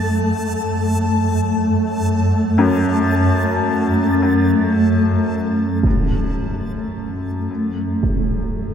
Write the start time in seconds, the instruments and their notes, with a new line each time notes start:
Already playing: synth drone F#2 A3, grand piano C#4, synth texture A5
2.58 grand piano F#2
5.83 synth drone F#2 A3, impact
8.03 impact